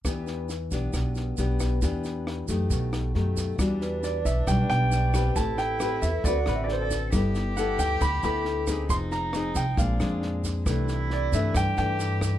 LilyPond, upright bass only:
\new Staff \with { instrumentName = "Upright bass" } { \clef bass \time 4/4 \key e \minor \tempo 4 = 136 e,4. b,,8 b,,4 b,,4 | e,4. fis,8 b,,4 fis,4 | e,4. b,,8 b,,8 b,,4. | a,,4. e,8 d,8 a,,4. |
g,,4. d,8 d,8 d,4. | f,,4. c,8 ais,,8 eis,4. | c,4. g,8 g,8 g,4. | }